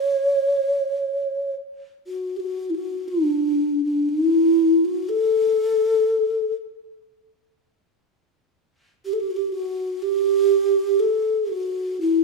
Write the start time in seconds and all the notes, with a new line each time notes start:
Already playing: C#5
2.06 F#4
2.36 F#4 G4
2.69 E4
2.74 F#4
3.07 D4
3.84 D4
4.08 E4
4.84 F#4
5.08 A4
9.05 G4
9.13 A4
9.19 G4
9.30 F#4
9.36 G4
9.52 F#4
10.02 G4
10.99 A4
11.51 F#4
12.00 E4